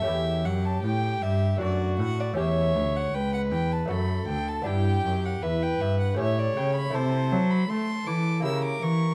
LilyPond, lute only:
<<
  \new Staff \with { instrumentName = "Lute" } { \time 3/4 \key a \mixolydian \tempo 4 = 79 <a cis' g'>2 <a d' fis'>4 | <a cis' g'>2 <a d' fis'>4 | <b d' e'>2 <a cis' g'>4 | \key a \dorian <a e' a'>2 <ais e' g'>4 | }
  \new Staff \with { instrumentName = "Lute" } { \clef bass \time 3/4 \key a \mixolydian e,8 fis,8 a,8 g,8 fis,8 a,8 | e,8 d,8 r8 e,8 fis,8 d,8 | g,8 fis,8 e,8 g,8 a,8 cis8 | \key a \dorian c8 fis8 a8 e8 cis8 e8 | }
>>